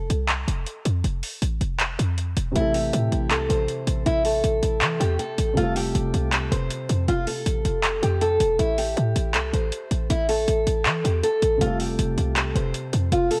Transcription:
0.10 808-style bass C2, closed hi-hat
0.29 clap, closed hi-hat
0.48 808-style bass F1, closed hi-hat
0.67 closed hi-hat
0.86 808-style bass F2, closed hi-hat
1.04 808-style bass F1, closed hi-hat
1.23 open hi-hat
1.42 808-style bass A1, closed hi-hat
1.61 808-style bass F1, closed hi-hat
1.80 clap, closed hi-hat
1.99 808-style bass F2, closed hi-hat
2.18 closed hi-hat
2.36 808-style bass E1, closed hi-hat
2.51 grand piano C3 E3
2.55 808-style bass A1, grand piano A3 E4, steel-string acoustic guitar E4, closed hi-hat
2.60 grand piano A4
2.74 steel-string acoustic guitar G4, open hi-hat
2.93 808-style bass A2, closed hi-hat
3.12 808-style bass A1, closed hi-hat
3.30 808-style bass C2, steel-string acoustic guitar A4, clap, closed hi-hat
3.50 808-style bass A1, steel-string acoustic guitar C5, closed hi-hat
3.69 closed hi-hat
3.87 808-style bass A1, closed hi-hat
4.06 808-style bass A1, steel-string acoustic guitar E4, closed hi-hat
4.25 steel-string acoustic guitar A4, open hi-hat
4.44 808-style bass A1, closed hi-hat
4.63 808-style bass A1, closed hi-hat
4.81 808-style bass E3, clap, closed hi-hat
5.00 808-style bass E2, steel-string acoustic guitar G4, closed hi-hat
5.19 steel-string acoustic guitar A4, closed hi-hat
5.38 808-style bass A1, closed hi-hat
5.54 808-style bass F1, grand piano C3 G3, steel-string acoustic guitar F4, closed hi-hat
5.58 grand piano A3 F4
5.62 grand piano A4
5.76 steel-string acoustic guitar G4, open hi-hat
5.95 808-style bass F1, closed hi-hat
6.14 808-style bass C2, closed hi-hat
6.32 steel-string acoustic guitar A4, clap, closed hi-hat
6.52 808-style bass F1, steel-string acoustic guitar C5, closed hi-hat
6.70 closed hi-hat
6.89 808-style bass F2, closed hi-hat
7.08 808-style bass F1, steel-string acoustic guitar F4, closed hi-hat
7.27 steel-string acoustic guitar A4, open hi-hat
7.46 808-style bass A1, closed hi-hat
7.65 808-style bass F1, closed hi-hat
7.83 clap, closed hi-hat
8.03 808-style bass F2, steel-string acoustic guitar G4, closed hi-hat
8.21 steel-string acoustic guitar A4, closed hi-hat
8.40 808-style bass E1, closed hi-hat
8.59 808-style bass A1, steel-string acoustic guitar E4, closed hi-hat
8.78 steel-string acoustic guitar G4, open hi-hat
8.97 808-style bass A2, closed hi-hat
9.16 808-style bass A1, closed hi-hat
9.34 808-style bass C2, steel-string acoustic guitar A4, clap, closed hi-hat
9.54 808-style bass A1, steel-string acoustic guitar C5, closed hi-hat
9.72 closed hi-hat
9.91 808-style bass A1, closed hi-hat
10.10 808-style bass A1, steel-string acoustic guitar E4, closed hi-hat
10.29 steel-string acoustic guitar A4, open hi-hat
10.48 808-style bass A1, closed hi-hat
10.67 808-style bass A1, closed hi-hat
10.85 808-style bass E3, clap, closed hi-hat
11.04 808-style bass E2, steel-string acoustic guitar G4, closed hi-hat
11.23 steel-string acoustic guitar A4, closed hi-hat
11.42 808-style bass A1, closed hi-hat
11.58 808-style bass F1, grand piano C3 G3, steel-string acoustic guitar F4, closed hi-hat
11.62 grand piano A3 F4
11.66 grand piano A4
11.80 steel-string acoustic guitar G4, open hi-hat
11.99 808-style bass F1, closed hi-hat
12.18 808-style bass C2, closed hi-hat
12.36 steel-string acoustic guitar A4, clap, closed hi-hat
12.55 808-style bass F1, steel-string acoustic guitar C5, closed hi-hat
12.74 closed hi-hat
12.93 808-style bass F2, closed hi-hat
13.12 808-style bass F1, steel-string acoustic guitar F4, closed hi-hat
13.31 steel-string acoustic guitar A4, open hi-hat

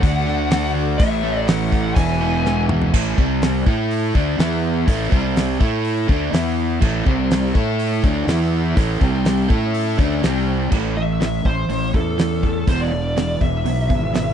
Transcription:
Already playing: lead electric guitar F#5
0.02 fingered electric bass D2, overdriven electric guitar D3 A3 D4 F#4, tonewheel organ A3 F#4 D5, kick, open hi-hat
0.26 overdriven electric guitar D4, snare
0.50 overdriven electric guitar A3, snare, open hi-hat
0.75 overdriven electric guitar D3
0.98 fingered electric bass A1, overdriven electric guitar A2 E3 A3 C#4, tonewheel organ A3 E4 C#5, lead electric guitar E5, kick, open hi-hat
1.02 overdriven electric guitar E4
1.24 overdriven electric guitar A3
1.47 overdriven electric guitar E3, lead electric guitar F#5, snare, open hi-hat
1.71 overdriven electric guitar A3, kick
1.95 fingered electric bass E1, overdriven electric guitar E2 B2 E3 G#3, tonewheel organ G#3 E4 B4, lead electric guitar G#5, kick, open hi-hat
1.99 overdriven electric guitar B3 E4
2.21 overdriven electric guitar B3
2.46 overdriven electric guitar G#3, snare
2.69 overdriven electric guitar E3, mid tom
2.82 floor tom
2.93 fingered electric bass A1, overdriven electric guitar A2 E3 A3, kick, crash
3.17 fingered electric bass C2, overdriven electric guitar C3 G3 C4, kick
3.42 snare, open hi-hat
3.66 fingered electric bass A2, overdriven electric guitar A3 E4 A4, kick
3.91 open hi-hat
4.14 fingered electric bass D2, overdriven electric guitar D3 A3 D4, kick
4.38 fingered electric bass E2, overdriven electric guitar E3 B3 E4, snare, open hi-hat
4.88 fingered electric bass A1, overdriven electric guitar A2 E3 A3, kick, open hi-hat
5.11 fingered electric bass C2, overdriven electric guitar C3 G3 C4, kick
5.36 snare, open hi-hat
5.60 fingered electric bass A2, overdriven electric guitar A3 E4 A4, kick
5.85 open hi-hat
6.09 fingered electric bass D2, overdriven electric guitar D3 A3 D4, kick
6.33 fingered electric bass E2, overdriven electric guitar E3 B3 E4, snare, open hi-hat
6.82 fingered electric bass A1, overdriven electric guitar A2 E3 A3, kick, crash
7.06 fingered electric bass C2, overdriven electric guitar C3 G3 C4, tonewheel organ G3 C4 C5, kick
7.31 snare, open hi-hat
7.54 fingered electric bass A2, tonewheel organ A3 E4 C#5, overdriven electric guitar A3 E4 A4, kick
7.79 open hi-hat
8.04 fingered electric bass D2, overdriven electric guitar D3 A3 D4, kick
8.27 fingered electric bass E2, overdriven electric guitar E3 B3 E4, tonewheel organ B3 E4 E5, snare, open hi-hat
8.77 fingered electric bass A1, overdriven electric guitar A2 E3 A3, kick, open hi-hat
9.01 fingered electric bass C2, overdriven electric guitar C3 G3 C4, tonewheel organ C4 G4 G5, kick
9.25 snare, open hi-hat
9.49 fingered electric bass A2, overdriven electric guitar A3 E4 A4, tonewheel organ C#4 A4 E5, kick
9.74 open hi-hat
9.98 fingered electric bass D2, overdriven electric guitar D3 A3 D4, kick
10.22 fingered electric bass C2, overdriven electric guitar C3 G3 C4, tonewheel organ C4 G4 G5, snare, open hi-hat
10.71 fingered electric bass A1, overdriven electric guitar A2 E3 A3, tonewheel organ A3 C#4 B5, kick, crash
10.96 overdriven electric guitar A2 E3, lead electric guitar E5
11.20 overdriven electric guitar A2 E3, snare, open hi-hat
11.45 fingered electric bass A1, overdriven electric guitar A2 E3, lead electric guitar C5, kick
11.68 fingered electric bass A1, overdriven electric guitar A2 E3, open hi-hat
11.94 fingered electric bass E2, overdriven electric guitar A2 E3, lead electric guitar A4, kick
12.18 overdriven electric guitar A2 E3, snare, open hi-hat
12.43 overdriven electric guitar A2 E3, kick
12.66 fingered electric bass E1, overdriven electric guitar E2 B2 E3, tonewheel organ G#3 E4 B4, lead electric guitar C5, kick, open hi-hat
12.81 lead electric guitar D5
12.91 overdriven electric guitar E2 B2
13.16 overdriven electric guitar E2 B2, snare, open hi-hat
13.41 fingered electric bass E1, overdriven electric guitar E2 B2, lead electric guitar E5, kick
13.65 fingered electric bass B1, overdriven electric guitar E2 B2, open hi-hat
13.89 fingered electric bass G#1, overdriven electric guitar E2 B2, kick
14.14 overdriven electric guitar E2 B2, snare, open hi-hat

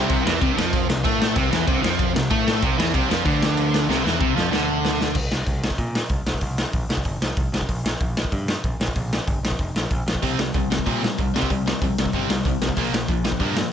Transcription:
0.08 picked electric bass C2, distorted electric guitar C3, kick, crash
0.25 picked electric bass E2, distorted electric guitar E3, snare
0.41 picked electric bass C2, distorted electric guitar C3, kick, crash
0.57 picked electric bass F2, distorted electric guitar F3, snare
0.73 kick, crash
0.89 picked electric bass C2, distorted electric guitar C3, snare
1.04 picked electric bass A2, distorted electric guitar A3, kick, crash
1.22 snare
1.36 picked electric bass C2, distorted electric guitar C3, kick, crash
1.52 picked electric bass E2, distorted electric guitar E3, snare
1.67 picked electric bass C2, distorted electric guitar C3, kick, crash
1.83 picked electric bass F2, distorted electric guitar F3, snare
1.99 kick, crash
2.15 picked electric bass C2, distorted electric guitar C3, snare
2.30 picked electric bass A2, distorted electric guitar A3, kick, crash
2.48 snare
2.63 picked electric bass C2, distorted electric guitar C3, kick, crash
2.78 picked electric bass E2, distorted electric guitar E3, snare
2.93 picked electric bass C2, distorted electric guitar C3, kick, crash
3.10 picked electric bass F2, distorted electric guitar F3, snare
3.25 picked electric bass D2, distorted electric guitar D3, kick, crash
3.43 snare
3.57 crash
3.74 snare
3.88 picked electric bass C2, distorted electric guitar C3, snare
4.05 picked electric bass E2, distorted electric guitar E3, snare
4.20 picked electric bass C2, distorted electric guitar C3, kick
4.36 picked electric bass F2, distorted electric guitar F3, snare
4.52 picked electric bass D2, distorted electric guitar D3, snare
4.85 snare
5.01 snare
5.15 picked electric bass C2, kick, crash
5.31 picked electric bass C2, snare
5.46 picked electric bass C2, kick, open hi-hat
5.64 snare
5.70 kick
5.78 picked electric bass A#2, kick, open hi-hat
5.95 snare
6.09 picked electric bass C2, kick, open hi-hat
6.26 picked electric bass C2, snare
6.34 kick
6.41 picked electric bass C2, kick, open hi-hat
6.58 snare
6.73 picked electric bass A#1, kick, open hi-hat
6.89 picked electric bass C2, snare
6.97 kick
7.05 picked electric bass G1, kick, open hi-hat
7.21 picked electric bass C2, snare
7.37 picked electric bass C2, kick, open hi-hat
7.52 picked electric bass C2, snare
7.61 kick
7.69 picked electric bass A#1, kick, open hi-hat
7.84 picked electric bass A#1, snare
8.00 picked electric bass A#1, kick, open hi-hat
8.17 snare
8.24 kick
8.32 picked electric bass G2, kick, open hi-hat
8.48 snare
8.64 picked electric bass A#1, kick, open hi-hat
8.80 picked electric bass A#1, snare
8.88 kick
8.95 picked electric bass A#1, kick, open hi-hat
9.13 snare
9.27 picked electric bass G1, kick, open hi-hat
9.43 picked electric bass A#1, snare
9.51 kick
9.59 picked electric bass F1, kick, open hi-hat
9.75 picked electric bass A#1, snare
9.90 picked electric bass A#1, kick, open hi-hat
10.06 picked electric bass A#1, snare
10.15 kick
10.22 picked electric bass C2, distorted electric guitar C3 G3 C4, kick, open hi-hat
10.38 picked electric bass C2, distorted electric guitar C3 G3, snare
10.54 picked electric bass C2, distorted electric guitar C3 G3, kick, open hi-hat
10.70 distorted electric guitar C3 G3, snare
10.79 kick
10.86 picked electric bass A#2, distorted electric guitar C3 G3 C4, kick, open hi-hat
11.02 distorted electric guitar C3 G3, snare
11.18 picked electric bass C2, distorted electric guitar C3 G3, kick, open hi-hat
11.34 picked electric bass C2, distorted electric guitar C3 G3 C4, snare
11.42 kick
11.50 picked electric bass C2, distorted electric guitar C3 G3, kick, open hi-hat
11.66 distorted electric guitar C3 G3, snare
11.81 picked electric bass A#1, distorted electric guitar C3 G3, kick, open hi-hat
11.98 picked electric bass C2, distorted electric guitar C3 G3, snare
12.05 kick
12.13 picked electric bass G1, distorted electric guitar C3 G3 C4, kick, open hi-hat
12.29 picked electric bass C2, distorted electric guitar C3 G3, snare
12.45 picked electric bass C2, distorted electric guitar C3 G3, kick, open hi-hat
12.62 picked electric bass C2, distorted electric guitar C3 G3, snare
12.69 kick
12.76 picked electric bass A#1, distorted electric guitar A#2 F3 A#3, kick, open hi-hat
12.93 picked electric bass A#1, distorted electric guitar A#2 F3, snare
13.08 picked electric bass A#1, distorted electric guitar A#2 F3, kick, open hi-hat
13.24 distorted electric guitar A#2 F3, snare
13.32 kick
13.40 picked electric bass G2, distorted electric guitar A#2 F3 A#3, kick, open hi-hat
13.56 distorted electric guitar A#2 F3, snare

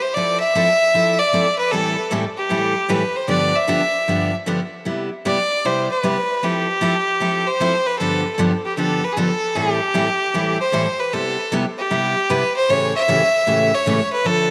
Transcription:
0.02 fiddle C5
0.14 steel-string acoustic guitar F3 C4 E4 A4, fiddle D5
0.40 fiddle E5
0.55 steel-string acoustic guitar F3 C4 E4 A4
0.94 steel-string acoustic guitar F3 C4 E4 A4
1.19 fiddle D5
1.33 steel-string acoustic guitar F3 C4 E4 A4
1.58 fiddle B4
1.71 steel-string acoustic guitar A2 E3 G3 C4 E4 A4, fiddle A4
2.11 steel-string acoustic guitar A2 E3 G3 C4 E4 A4
2.37 fiddle G4
2.49 steel-string acoustic guitar A2 E3 G3 C4 E4 A4
2.89 steel-string acoustic guitar A2 E3 G3 C4 E4 A4, fiddle B4
3.16 fiddle C5
3.28 steel-string acoustic guitar G2 D3 F3 B3 D4 G4, fiddle D5
3.56 fiddle E5
3.67 steel-string acoustic guitar G2 D3 F3 B3 D4 G4
4.08 steel-string acoustic guitar G2 D3 F3 B3 D4 G4
4.46 steel-string acoustic guitar G2 D3 F3 B3 D4 G4
4.85 steel-string acoustic guitar C3 G3 B3 E4 G4
5.25 steel-string acoustic guitar C3 G3 B3 E4 G4, fiddle D5
5.65 steel-string acoustic guitar C3 G3 B3 E4 G4, fiddle C5
5.91 fiddle B4
6.03 steel-string acoustic guitar C3 G3 B3 E4 G4
6.43 steel-string acoustic guitar F3 C4 E4 A4, fiddle G4
6.81 steel-string acoustic guitar F3 C4 E4 A4
7.20 steel-string acoustic guitar F3 C4 E4 A4
7.47 fiddle C5
7.60 steel-string acoustic guitar F3 C4 E4 A4
7.86 fiddle B4
7.99 steel-string acoustic guitar G2 D3 F3 B3 D4 G4, fiddle A4
8.38 steel-string acoustic guitar G2 D3 F3 B3 D4 G4
8.65 fiddle G4
8.77 steel-string acoustic guitar G2 D3 F3 B3 D4 G4, fiddle A4
9.04 fiddle B4
9.13 steel-string acoustic guitar G2, fiddle G#4
9.17 steel-string acoustic guitar D3 F3 B3 D4 G4, fiddle A4
9.55 steel-string acoustic guitar A2 E3 G3 C4 E4 A4, fiddle G#4
9.73 fiddle G4
9.94 steel-string acoustic guitar A2 E3 G3 C4 E4 A4
10.34 steel-string acoustic guitar A2 E3 G3 C4 E4 A4
10.60 fiddle C5
10.72 steel-string acoustic guitar A2 E3 G3 C4 E4 A4
11.00 fiddle B4
11.13 steel-string acoustic guitar C3 G3 B3 E4 G4, fiddle A4
11.52 steel-string acoustic guitar C3 G3 B3 E4 G4
11.78 fiddle G4
11.91 steel-string acoustic guitar C3 G3 B3 E4 G4
12.30 steel-string acoustic guitar C3 G3 B3 E4 G4, fiddle B4
12.56 fiddle C5
12.69 steel-string acoustic guitar A2 C#3 E3 A3 C#4 G4, fiddle C#5
12.96 fiddle E5
13.08 steel-string acoustic guitar A2 C#3 E3 A3 C#4 G4
13.47 steel-string acoustic guitar A2 C#3 E3 A3 C#4 G4
13.74 fiddle C#5
13.86 steel-string acoustic guitar A2 C#3 E3 A3 C#4 G4
14.12 fiddle B4
14.24 steel-string acoustic guitar D3 F3 C4 D4 A4, fiddle A4

